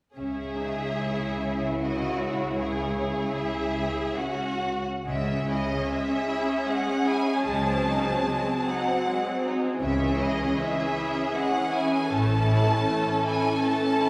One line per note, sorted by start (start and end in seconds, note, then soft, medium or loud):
0.16 4.81 C#2 soft
0.16 4.81 C#3 soft
0.16 0.56 C#4 soft
0.16 1.76 G#4 soft
0.16 1.77 E5 soft
0.58 0.99 D#4 soft
1.00 4.14 E4 soft
1.81 2.57 F#4 soft
1.81 2.20 D#5 soft
2.19 2.56 C#5 soft
2.57 2.96 G#4 soft
2.57 3.34 C#5 soft
2.98 4.16 G#4 soft
3.36 4.18 E5 soft
4.18 4.85 C#4 soft
4.18 4.85 F#4 soft
4.18 4.85 F#5 soft
5.05 5.74 C#2 soft
5.05 5.73 C#3 soft
5.05 7.42 G#3 soft
5.05 5.25 G#3 soft
5.05 8.23 C#4 soft
5.05 9.79 G#4 soft
5.05 5.45 E5 soft
5.27 5.47 C#4 soft
5.48 5.67 E4 soft
5.48 5.89 D#5 soft
5.67 5.87 C#4 soft
5.88 6.07 G#3 soft
5.88 6.67 E5 soft
6.08 6.27 C#4 soft
6.28 6.47 E4 soft
6.48 6.68 C#4 soft
6.67 6.87 G#3 soft
6.67 7.07 F#5 soft
6.89 7.07 C#4 soft
7.05 7.26 E4 soft
7.05 7.46 G#5 soft
7.27 7.47 C#4 soft
7.46 8.14 C#2 soft
7.46 8.14 C#3 soft
7.46 9.79 F#3 soft
7.46 7.65 G#3 soft
7.46 8.65 A5 soft
7.68 7.87 C4 soft
7.89 8.08 D#4 soft
8.08 8.28 C4 soft
8.28 8.48 G#3 soft
8.28 9.82 C4 soft
8.49 8.68 C4 soft
8.67 8.87 D#4 soft
8.67 9.44 F#5 soft
8.88 9.07 C4 soft
9.09 9.26 G#3 soft
9.27 9.45 C4 soft
9.47 9.64 D#4 soft
9.64 9.83 C4 soft
9.81 10.45 C#2 soft
9.81 10.45 C#3 soft
9.81 14.10 E3 soft
9.81 10.01 G#3 soft
9.81 14.10 C#4 soft
9.81 12.08 G#4 soft
9.81 10.17 E5 soft
10.02 10.21 C#4 soft
10.19 10.39 E4 soft
10.19 10.58 D#5 soft
10.38 10.58 C#4 soft
10.59 10.78 G#3 soft
10.59 11.35 E5 soft
10.78 10.97 C#4 soft
10.97 11.16 E4 soft
11.16 11.35 C#4 soft
11.34 11.53 G#3 soft
11.34 11.72 F#5 soft
11.53 11.73 C#4 soft
11.73 11.92 E4 soft
11.73 12.12 G#5 soft
11.92 12.12 C#4 soft
12.11 12.76 A1 soft
12.11 12.76 A2 soft
12.11 12.29 A3 soft
12.11 14.10 A4 soft
12.11 13.26 A5 medium
12.31 12.51 C#4 soft
12.49 12.69 E4 soft
12.69 12.88 C#4 soft
12.88 13.07 A3 soft
13.07 13.26 C#4 soft
13.25 13.44 E4 soft
13.25 13.63 G#5 medium
13.43 13.62 C#4 soft
13.62 13.82 A3 soft
13.62 14.10 A5 medium
13.83 14.02 C#4 soft
14.01 14.10 E4 soft